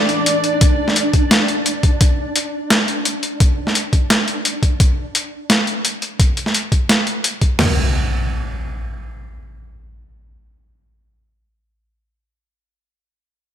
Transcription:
0.00 1.97 E3 medium
0.00 1.97 A3 medium
0.00 4.81 D4 medium
0.00 1.97 A4 medium
0.00 1.98 D5 medium
0.09 closed hi-hat soft
0.26 closed hi-hat medium
0.44 closed hi-hat soft
0.61 kick loud
0.61 closed hi-hat medium
0.88 snare soft
0.96 closed hi-hat medium
1.13 kick medium
1.13 closed hi-hat soft
1.31 snare loud
1.31 closed hi-hat medium
1.48 closed hi-hat soft
1.66 closed hi-hat medium
1.83 kick medium
1.83 closed hi-hat soft
2.01 kick loud
2.01 closed hi-hat medium
2.36 closed hi-hat medium
2.70 snare loud
2.70 closed hi-hat medium
2.88 closed hi-hat soft
3.05 closed hi-hat medium
3.23 closed hi-hat soft
3.40 kick loud
3.40 closed hi-hat medium
3.67 snare soft
3.75 closed hi-hat medium
3.93 kick medium
3.93 closed hi-hat soft
4.10 snare loud
4.10 closed hi-hat medium
4.28 closed hi-hat soft
4.45 closed hi-hat medium
4.63 kick medium
4.63 closed hi-hat soft
4.80 kick loud
4.80 closed hi-hat medium
5.15 closed hi-hat medium
5.50 snare loud
5.50 closed hi-hat medium
5.67 closed hi-hat soft
5.85 closed hi-hat medium
6.02 closed hi-hat soft
6.20 kick loud
6.20 closed hi-hat medium
6.37 closed hi-hat soft
6.46 snare soft
6.54 closed hi-hat medium
6.72 kick medium
6.72 closed hi-hat soft
6.89 snare loud
6.89 closed hi-hat medium
7.07 closed hi-hat soft
7.24 closed hi-hat medium
7.41 kick medium
7.41 closed hi-hat soft
7.59 snare loud
7.59 floor tom loud
7.59 crash medium
7.59 impact medium

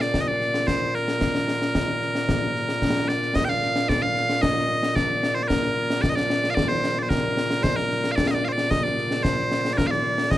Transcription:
0.00 10.38 A#2 medium
0.00 0.21 D5 loud
0.00 snare medium
0.14 concert bass drum medium
0.14 snare medium
0.21 0.28 D#5 medium
0.28 0.67 D5 loud
0.41 snare soft
0.54 snare medium
0.67 0.95 C5 medium
0.67 concert bass drum soft
0.67 snare medium
0.95 3.08 A#4 medium
0.95 snare soft
1.08 snare medium
1.21 concert bass drum medium
1.21 snare medium
1.35 snare medium
1.48 snare medium
1.62 snare medium
1.75 concert bass drum medium
1.75 snare medium
2.02 snare soft
2.15 snare medium
2.29 concert bass drum medium
2.29 snare medium
2.55 snare soft
2.69 snare medium
2.82 concert bass drum soft
2.82 snare medium
2.95 snare soft
3.08 3.35 D5 medium
3.08 snare medium
3.22 snare soft
3.35 3.45 D#5 loud
3.35 concert bass drum medium
3.35 snare loud
3.45 3.49 G5 loud
3.49 3.89 F5 loud
3.49 snare soft
3.62 snare soft
3.76 snare medium
3.89 4.02 D5 loud
3.89 concert bass drum medium
3.89 snare loud
4.02 4.42 F5 loud
4.16 snare soft
4.29 snare medium
4.42 4.95 D#5 loud
4.42 concert bass drum medium
4.42 snare loud
4.56 snare soft
4.83 snare medium
4.95 5.35 D5 loud
4.95 concert bass drum medium
4.95 snare medium
5.23 snare medium
5.35 5.43 C5 medium
5.43 5.48 D5 medium
5.48 6.02 A#4 medium
5.48 concert bass drum medium
5.48 snare loud
5.64 snare soft
5.90 snare medium
6.02 6.10 D5 medium
6.02 concert bass drum medium
6.02 snare loud
6.10 6.15 D#5 medium
6.15 6.50 D5 loud
6.15 snare medium
6.30 snare medium
6.44 snare medium
6.50 6.55 F5 loud
6.55 6.69 D5 loud
6.55 concert bass drum medium
6.55 snare medium
6.69 6.99 C5 loud
6.84 snare medium
6.99 7.09 C5 medium
6.99 7.03 D5 medium
7.09 7.63 A#4 medium
7.09 concert bass drum medium
7.09 snare loud
7.37 snare medium
7.51 snare medium
7.63 7.76 C5 loud
7.63 concert bass drum medium
7.63 snare loud
7.76 8.12 A#4 medium
7.76 snare soft
7.91 snare soft
8.04 snare medium
8.12 8.16 F5 medium
8.16 8.27 D5 medium
8.16 concert bass drum medium
8.16 snare loud
8.27 8.34 D#5 medium
8.27 8.31 F5 medium
8.34 8.45 D5 loud
8.45 8.49 F5 medium
8.45 snare soft
8.49 8.53 C5 medium
8.53 8.70 D5 loud
8.58 snare medium
8.70 8.83 D#5 loud
8.70 concert bass drum medium
8.70 snare loud
8.83 9.23 D5 medium
8.83 snare soft
8.98 snare soft
9.11 snare medium
9.23 9.73 C5 medium
9.23 concert bass drum medium
9.23 snare loud
9.52 snare medium
9.65 snare medium
9.73 9.77 D5 medium
9.77 9.87 A#4 medium
9.77 concert bass drum medium
9.77 snare loud
9.87 10.31 D5 medium
9.87 9.91 F5 medium
9.92 snare soft
10.18 snare medium
10.31 10.38 D#5 medium
10.31 concert bass drum medium
10.31 snare loud

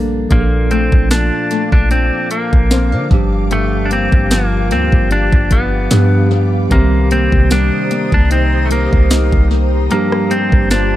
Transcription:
0.00 0.27 A#1 loud
0.00 0.31 G2 medium
0.00 0.28 F3 medium
0.00 1.10 F3 medium
0.00 0.31 G3 soft
0.00 0.31 A#3 soft
0.00 0.70 A#3 medium
0.00 0.32 D4 soft
0.00 1.90 D4 medium
0.00 0.32 A4 medium
0.30 0.90 A#1 loud
0.30 3.11 A#2 medium
0.30 3.06 F3 medium
0.30 3.07 A#3 medium
0.30 0.73 A#3 medium
0.30 3.08 D4 medium
0.30 6.67 F5 medium
0.30 3.08 A5 medium
0.30 6.67 D6 medium
0.30 kick loud
0.30 closed hi-hat medium
0.34 0.39 G#4 medium
0.40 3.12 A4 medium
0.70 1.49 A3 medium
0.70 1.08 C4 loud
0.70 closed hi-hat medium
0.92 1.31 A#1 loud
0.92 kick loud
1.10 3.54 F3 medium
1.10 1.69 D4 loud
1.10 snare loud
1.10 closed hi-hat medium
1.50 2.31 A3 medium
1.50 closed hi-hat medium
1.72 2.11 A#1 loud
1.72 1.91 D4 loud
1.72 kick loud
1.91 2.28 C4 loud
1.91 2.70 D4 medium
1.91 closed hi-hat medium
2.31 3.07 A#3 medium
2.31 closed hi-hat medium
2.53 2.94 A#1 loud
2.53 kick medium
2.71 2.92 C4 medium
2.71 snare loud
2.71 closed hi-hat medium
2.92 3.10 D3 medium
2.92 3.19 D4 medium
3.10 4.08 G1 loud
3.10 3.50 G2 medium
3.10 5.86 F3 medium
3.10 5.87 G3 medium
3.10 5.88 D4 medium
3.10 6.67 G4 medium
3.10 kick loud
3.14 5.88 G4 medium
3.51 5.90 G2 medium
3.51 3.86 A3 medium
3.51 closed hi-hat medium
3.85 3.91 D4 medium
3.91 4.70 A#3 medium
3.91 4.33 C4 medium
3.91 closed hi-hat medium
4.12 4.73 G1 loud
4.12 kick loud
4.31 6.00 F3 medium
4.31 4.69 A#3 medium
4.31 snare loud
4.31 closed hi-hat medium
4.71 4.92 D2 loud
4.71 5.51 A#3 medium
4.71 5.12 C4 loud
4.71 closed hi-hat medium
4.92 5.31 G1 loud
4.92 kick loud
5.11 5.99 D4 medium
5.11 5.53 D4 loud
5.11 closed hi-hat medium
5.33 5.89 G1 loud
5.33 kick loud
5.51 6.28 B3 loud
5.51 kick medium
5.51 closed hi-hat medium
5.91 6.68 G2 loud
5.91 6.80 G2 medium
5.91 6.71 F3 medium
5.91 6.69 G3 medium
5.91 6.71 B3 medium
5.91 6.72 D4 medium
5.91 6.72 G4 medium
5.91 snare loud
5.91 closed hi-hat medium
6.31 6.80 B3 medium
6.70 7.30 C2 loud
6.70 9.91 C3 medium
6.70 9.86 D#3 medium
6.70 9.87 G3 medium
6.70 9.87 A#3 medium
6.70 7.09 A#3 medium
6.70 9.88 C4 medium
6.70 10.96 G4 medium
6.70 9.87 C5 medium
6.70 10.96 A#5 medium
6.70 9.87 D#6 medium
6.70 kick loud
6.70 closed hi-hat medium
6.74 9.88 G4 medium
7.11 7.90 A#3 medium
7.11 7.51 C4 loud
7.11 closed hi-hat medium
7.32 7.71 C2 loud
7.32 kick loud
7.51 10.70 G3 medium
7.51 8.13 D4 loud
7.51 snare loud
7.51 closed hi-hat medium
7.91 8.71 A#3 medium
7.91 closed hi-hat medium
8.12 8.89 C2 loud
8.12 8.30 D4 loud
8.12 kick loud
8.31 8.66 C4 loud
8.31 9.10 D#4 medium
8.31 closed hi-hat medium
8.66 8.71 A3 medium
8.71 9.50 A#3 medium
8.71 9.47 A#3 medium
8.71 closed hi-hat medium
8.93 9.31 C2 loud
8.93 kick loud
9.11 9.99 D#4 medium
9.11 snare loud
9.11 closed hi-hat medium
9.32 9.89 C2 medium
9.32 kick loud
9.51 10.30 A#3 medium
9.90 10.96 G2 medium
9.90 10.96 F3 medium
9.90 10.96 G3 medium
9.90 10.32 A#3 medium
9.90 10.96 A#3 medium
9.90 10.96 D4 medium
9.90 10.96 F5 medium
9.90 10.96 D6 medium
9.90 closed hi-hat medium
9.94 10.96 G4 medium
10.12 cross-stick loud
10.31 10.96 A#3 medium
10.31 10.71 C4 loud
10.31 closed hi-hat medium
10.52 10.96 G1 loud
10.52 kick loud
10.71 10.96 F3 medium
10.71 10.96 D4 loud
10.71 snare loud
10.71 closed hi-hat medium

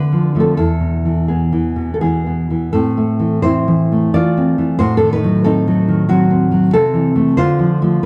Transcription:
0.00 0.56 D3 medium
0.00 0.35 D4 medium
0.00 0.38 B4 loud
0.12 0.34 F3 medium
0.35 0.55 F3 medium
0.35 0.56 A3 medium
0.40 0.57 C4 medium
0.40 0.56 A4 medium
0.57 2.67 E2 medium
0.57 1.25 E4 medium
0.57 1.26 A4 loud
0.80 1.75 B2 medium
1.05 1.51 E3 medium
1.28 1.89 B3 medium
1.28 1.90 G#4 medium
1.52 2.01 E3 medium
1.76 2.71 B2 medium
1.94 2.00 A4 medium
2.01 2.49 E3 medium
2.01 2.25 B3 medium
2.01 2.69 G#4 medium
2.26 2.73 B3 medium
2.50 2.73 E3 medium
2.73 4.14 A2 medium
2.73 3.40 C4 medium
2.73 3.40 A4 loud
2.97 3.43 A3 medium
3.19 3.67 E3 medium
3.42 4.36 C4 medium
3.42 4.09 E4 medium
3.42 4.09 C5 loud
3.68 4.13 E3 medium
3.92 4.80 A3 medium
4.14 4.57 E3 medium
4.14 4.76 F4 medium
4.14 4.76 D5 loud
4.37 4.80 C4 medium
4.58 4.79 E3 medium
4.79 6.70 A2 loud
4.79 4.94 F#4 loud
4.79 4.95 C5 loud
4.97 5.12 D4 medium
4.97 5.12 A4 loud
5.03 5.87 D#3 medium
5.13 5.44 D#4 medium
5.13 5.43 B4 loud
5.24 5.66 F#3 medium
5.44 6.08 C4 medium
5.44 6.06 D#4 medium
5.44 6.06 A4 loud
5.67 6.08 F#3 medium
5.88 6.73 D#3 medium
6.09 6.50 F#3 medium
6.09 6.29 C4 medium
6.09 6.70 F#4 loud
6.30 6.73 C4 medium
6.51 6.73 F#3 medium
6.73 7.36 C3 medium
6.73 7.34 C4 medium
6.73 7.35 A4 loud
6.94 7.14 E3 medium
7.15 7.35 E3 medium
7.15 7.35 A3 medium
7.37 8.02 D3 medium
7.37 8.00 F4 medium
7.37 8.01 C5 loud
7.59 7.81 F3 medium
7.82 8.02 F3 medium
7.82 8.01 A3 medium

